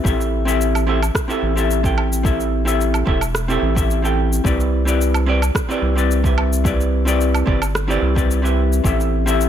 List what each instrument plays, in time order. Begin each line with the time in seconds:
0.04 analog synth bass A1, hollow-body jazz guitar C4 E4 G4 A4 E5, kick, cabasa
0.21 cabasa
0.45 hollow-body jazz guitar C4 E4 G4 A4 E5, cabasa
0.61 cabasa
0.75 cabasa, low woodblock
0.87 hollow-body jazz guitar C4 E4 G4 A4 E5
1.03 cabasa, low woodblock
1.15 kick, cross-stick, cabasa
1.28 hollow-body jazz guitar C4 E4 G4 A4 E5, cabasa
1.43 analog synth bass A1
1.55 hollow-body jazz guitar C4 E4 G4 A4 E5, cabasa
1.71 cabasa
1.83 hollow-body jazz guitar C4 E4 G4 A4 G5, kick, cabasa
1.98 low woodblock
2.13 cabasa
2.23 hollow-body jazz guitar C4 E4 G4 A4 E5, kick, cabasa
2.40 cabasa
2.65 hollow-body jazz guitar C4 E4 G4 A4 E5, cabasa
2.81 cabasa
2.94 cabasa, low woodblock
3.05 analog synth bass E1, hollow-body jazz guitar C4 E4 G4 A4 E5, kick
3.21 cabasa, low woodblock
3.35 cross-stick, cabasa
3.48 hollow-body jazz guitar C4 E4 G4 A4 E5, cabasa
3.62 analog synth bass A1
3.75 hollow-body jazz guitar C4 E4 G4 A4 E5, kick, cabasa
3.91 cabasa
4.02 hollow-body jazz guitar C4 E4 G4 A4 G5, cabasa
4.33 cabasa
4.44 analog synth bass C2, hollow-body jazz guitar C4 E4 G4 B4 D5, kick, cabasa
4.60 cabasa
4.85 hollow-body jazz guitar C4 E4 G4 B4 D5, cabasa
5.01 cabasa
5.14 cabasa, low woodblock
5.26 hollow-body jazz guitar C4 E4 G4 B4 D5
5.42 cabasa, low woodblock
5.55 kick, cross-stick, cabasa
5.69 hollow-body jazz guitar C4 E4 G4 B4 D5, cabasa
5.82 analog synth bass C2
5.95 hollow-body jazz guitar C4 E4 G4 B4 D5, cabasa
6.11 cabasa
6.24 hollow-body jazz guitar C4 E4 G4 B4 E5, kick, cabasa
6.38 low woodblock
6.53 cabasa
6.64 hollow-body jazz guitar C4 E4 G4 B4 D5, kick, cabasa
6.81 cabasa
7.05 hollow-body jazz guitar C4 E4 G4 B4 D5, cabasa
7.21 cabasa
7.35 cabasa, low woodblock
7.46 analog synth bass G1, hollow-body jazz guitar C4 E4 G4 B4 D5, kick
7.62 cabasa, low woodblock
7.75 cross-stick, cabasa
7.88 hollow-body jazz guitar C4 E4 G4 B4 D5, cabasa
8.02 analog synth bass C2
8.15 hollow-body jazz guitar C4 E4 G4 B4 D5, kick, cabasa
8.31 cabasa
8.42 hollow-body jazz guitar C4 E4 G4 B4 E5, cabasa
8.73 cabasa
8.84 analog synth bass A1, hollow-body jazz guitar C4 E4 G4 A4 E5, kick, cabasa
9.00 cabasa
9.26 hollow-body jazz guitar C4 E4 G4 A4 E5, cabasa
9.41 cabasa